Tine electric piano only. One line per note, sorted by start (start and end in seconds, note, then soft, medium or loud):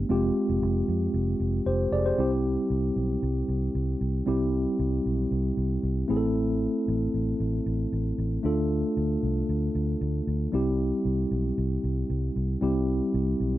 0.09 2.14 G#3 medium
0.09 2.14 C4 medium
0.09 2.15 F4 medium
0.09 1.64 G4 medium
1.66 1.91 G4 soft
1.66 1.91 C5 medium
1.93 2.05 G#4 medium
1.93 2.05 D5 medium
2.06 2.19 G4 medium
2.06 2.30 C5 medium
2.18 4.23 G3 medium
2.18 4.23 C4 medium
2.18 4.24 E4 medium
2.18 4.24 G4 medium
4.26 6.05 G3 medium
4.26 6.06 C4 medium
4.26 6.06 E4 medium
4.26 6.07 G4 medium
6.08 8.14 A3 medium
6.08 8.14 C4 medium
6.08 8.14 E4 medium
6.08 6.16 G#4 medium
6.17 8.18 A4 medium
8.43 10.49 A3 medium
8.43 10.49 D4 medium
8.43 10.49 F4 medium
8.43 10.50 A4 medium
10.52 12.57 G3 medium
10.52 12.58 C4 medium
10.52 12.58 E4 medium
10.52 12.59 G4 medium
12.61 13.58 G3 medium
12.61 13.58 C4 medium
12.61 13.58 E4 medium
12.61 13.58 G4 medium